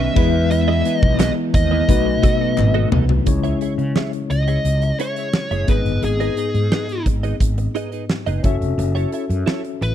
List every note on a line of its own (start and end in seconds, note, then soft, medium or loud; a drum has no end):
0.00 0.16 B2 medium
0.00 0.17 F#3 medium
0.00 0.12 B3 medium
0.00 0.19 B3 medium
0.00 0.12 C#4 medium
0.00 0.14 C#4 medium
0.00 0.13 F#4 medium
0.00 0.14 F#4 medium
0.00 0.14 B4 medium
0.00 0.13 C#5 medium
0.00 0.14 D#5 medium
0.00 0.50 E5 loud
0.15 0.81 E2 medium
0.15 1.16 E3 medium
0.15 1.85 G#3 medium
0.15 1.85 B3 medium
0.15 0.28 B3 medium
0.15 0.51 B3 soft
0.15 0.51 E4 medium
0.15 0.28 E4 medium
0.15 1.86 E4 medium
0.15 0.28 G#4 medium
0.15 1.86 B4 medium
0.15 0.29 D#5 medium
0.15 kick loud
0.15 crash medium
0.34 muted clean electric guitar stroke soft
0.51 1.89 B3 medium
0.51 1.91 E4 loud
0.51 0.97 E5 loud
0.51 muted clean electric guitar stroke soft
0.51 closed hi-hat medium
0.68 0.83 B3 medium
0.68 0.83 E4 medium
0.68 0.83 G#4 medium
0.68 0.83 D#5 medium
0.85 0.97 B3 medium
0.85 0.97 E4 medium
0.85 0.97 G#4 medium
0.85 0.98 D#5 medium
0.85 closed hi-hat medium
0.97 1.16 D#5 loud
1.03 1.29 B1 loud
1.03 muted clean electric guitar stroke soft
1.03 kick medium
1.19 1.34 B3 medium
1.19 1.35 E4 medium
1.19 1.35 G#4 loud
1.19 1.29 D#5 loud
1.19 1.35 D#5 loud
1.19 snare loud
1.19 clap medium
1.19 closed hi-hat medium
1.19 tambourine medium
1.37 muted clean electric guitar stroke soft
1.54 1.80 D#2 medium
1.54 2.88 D#5 medium
1.54 muted clean electric guitar stroke soft
1.54 kick medium
1.54 closed hi-hat medium
1.71 1.84 B3 medium
1.71 1.83 E4 medium
1.71 1.83 G#4 medium
1.71 1.83 D#5 medium
1.88 2.15 B1 loud
1.88 2.92 B2 medium
1.88 2.89 B2 medium
1.88 2.93 F#3 medium
1.88 3.24 A3 medium
1.88 3.24 B3 medium
1.88 2.90 B3 medium
1.88 3.24 D#4 medium
1.88 3.25 F#4 medium
1.88 3.25 B4 medium
1.88 muted clean electric guitar stroke soft
1.88 kick medium
1.88 closed hi-hat loud
2.05 muted clean electric guitar stroke soft
2.23 2.38 B3 medium
2.23 2.38 F#4 medium
2.23 2.38 A4 medium
2.23 2.38 D#5 medium
2.23 kick loud
2.23 closed hi-hat medium
2.40 2.52 B3 soft
2.40 2.52 F#4 medium
2.40 2.52 A4 medium
2.40 2.52 D#5 medium
2.57 2.84 G#1 medium
2.57 clap medium
2.57 high tom medium
2.74 2.90 B3 medium
2.74 2.90 F#4 medium
2.74 2.90 A4 medium
2.74 2.89 D#5 medium
2.91 3.18 C2 medium
2.91 3.28 F#3 medium
2.91 3.26 B3 medium
2.91 3.03 B3 medium
2.91 3.04 F#4 medium
2.91 3.04 A4 medium
2.91 3.04 D#5 medium
2.91 mid tom medium
3.09 muted clean electric guitar stroke soft
3.09 floor tom medium
3.26 3.53 C#2 medium
3.26 4.26 C#3 medium
3.26 5.64 G#3 medium
3.26 5.64 C#4 medium
3.26 5.65 E4 medium
3.26 5.65 C#5 medium
3.26 muted clean electric guitar stroke soft
3.26 kick loud
3.26 closed hi-hat medium
3.44 3.59 E4 medium
3.44 3.59 G#4 medium
3.44 3.59 C#5 medium
3.44 3.58 E5 medium
3.44 closed hi-hat soft
3.61 3.73 E4 medium
3.61 3.73 G#4 medium
3.61 3.73 C#5 medium
3.61 3.73 E5 medium
3.61 closed hi-hat medium
3.78 3.91 C#3 medium
3.78 muted clean electric guitar stroke soft
3.78 closed hi-hat soft
3.96 4.10 E4 medium
3.96 4.11 G#4 medium
3.96 4.11 C#5 medium
3.96 4.11 E5 medium
3.96 snare medium
4.13 muted clean electric guitar stroke soft
4.13 closed hi-hat soft
4.30 4.56 C#2 medium
4.30 4.99 D#5 loud
4.30 muted clean electric guitar stroke soft
4.30 closed hi-hat medium
4.48 4.60 E4 soft
4.48 4.60 G#4 medium
4.48 4.59 C#5 medium
4.48 4.59 E5 medium
4.48 closed hi-hat medium
4.65 4.91 C#2 medium
4.65 muted clean electric guitar stroke soft
4.65 closed hi-hat medium
4.82 muted clean electric guitar stroke soft
4.82 closed hi-hat medium
4.99 5.14 E4 medium
4.99 5.14 G#4 medium
4.99 5.71 C#5 medium
4.99 5.15 C#5 medium
4.99 5.15 E5 medium
4.99 closed hi-hat medium
5.16 5.29 E4 soft
5.16 5.29 G#4 soft
5.16 5.28 C#5 medium
5.16 5.28 E5 medium
5.16 closed hi-hat soft
5.33 muted clean electric guitar stroke soft
5.33 snare loud
5.51 5.64 F#1 medium
5.51 5.67 E4 medium
5.51 5.66 G#4 medium
5.51 5.66 C#5 medium
5.51 5.66 E5 medium
5.51 closed hi-hat medium
5.67 5.81 G#1 medium
5.67 6.68 G#2 medium
5.67 8.40 B3 medium
5.67 8.40 D#4 medium
5.67 5.80 D#4 medium
5.67 8.41 G#4 medium
5.67 5.80 G#4 medium
5.67 6.04 B4 medium
5.67 5.80 B4 medium
5.67 8.41 D#5 medium
5.67 5.80 D#5 medium
5.67 kick medium
5.67 closed hi-hat medium
5.85 5.98 G1 medium
5.85 muted clean electric guitar stroke soft
5.85 closed hi-hat soft
6.02 6.28 G#1 medium
6.02 7.03 G#4 medium
6.02 muted clean electric guitar stroke soft
6.02 closed hi-hat medium
6.20 6.35 D#4 medium
6.20 6.35 G#4 medium
6.20 6.35 B4 medium
6.20 6.35 D#5 medium
6.20 closed hi-hat soft
6.37 6.49 D#4 medium
6.37 6.49 G#4 medium
6.37 6.49 B4 medium
6.37 6.49 D#5 medium
6.37 closed hi-hat medium
6.54 6.67 G#2 medium
6.54 muted clean electric guitar stroke soft
6.54 closed hi-hat soft
6.72 6.86 D#4 medium
6.72 6.86 G#4 medium
6.72 6.87 B4 medium
6.72 6.87 D#5 medium
6.72 snare loud
6.89 closed hi-hat soft
7.06 7.32 G#1 medium
7.06 muted clean electric guitar stroke soft
7.06 kick medium
7.06 closed hi-hat medium
7.23 7.36 D#4 soft
7.23 7.35 G#4 soft
7.23 7.35 B4 medium
7.23 7.35 D#5 medium
7.23 closed hi-hat medium
7.40 7.66 G#1 medium
7.40 muted clean electric guitar stroke soft
7.40 kick medium
7.40 closed hi-hat medium
7.58 muted clean electric guitar stroke soft
7.58 closed hi-hat medium
7.75 7.90 D#4 medium
7.75 7.90 G#4 medium
7.75 7.90 B4 medium
7.75 7.90 D#5 medium
7.75 closed hi-hat medium
7.92 8.04 D#4 soft
7.92 8.04 G#4 medium
7.92 8.04 B4 medium
7.92 8.03 D#5 medium
7.92 closed hi-hat soft
8.09 muted clean electric guitar stroke soft
8.09 snare medium
8.26 8.40 F#1 medium
8.26 8.42 D#4 medium
8.26 8.42 G#4 medium
8.26 8.42 B4 medium
8.26 8.41 D#5 medium
8.26 closed hi-hat medium
8.43 8.57 F#1 medium
8.43 9.95 C#4 medium
8.43 8.55 E4 medium
8.43 9.95 F#4 medium
8.43 8.56 A4 medium
8.43 9.95 A4 medium
8.43 8.56 C#5 medium
8.43 8.56 E5 medium
8.43 9.95 E5 medium
8.43 kick medium
8.43 closed hi-hat medium
8.61 8.74 F1 medium
8.61 muted clean electric guitar stroke soft
8.61 closed hi-hat soft
8.78 9.04 F#1 loud
8.78 muted clean electric guitar stroke soft
8.78 closed hi-hat medium
8.95 9.11 E4 medium
8.95 9.11 A4 medium
8.95 9.10 C#5 medium
8.95 9.10 E5 medium
8.95 closed hi-hat soft
9.12 9.24 E4 medium
9.12 9.24 A4 medium
9.12 9.25 C#5 medium
9.12 9.25 E5 medium
9.12 closed hi-hat medium
9.30 9.43 F#2 loud
9.30 muted clean electric guitar stroke soft
9.30 closed hi-hat soft
9.46 9.62 E4 medium
9.46 9.62 A4 medium
9.46 9.62 C#5 medium
9.46 9.62 E5 medium
9.46 snare loud
9.64 muted clean electric guitar stroke medium
9.64 closed hi-hat soft
9.81 9.95 A1 medium
9.81 9.95 B4 loud
9.81 muted clean electric guitar stroke soft
9.81 closed hi-hat medium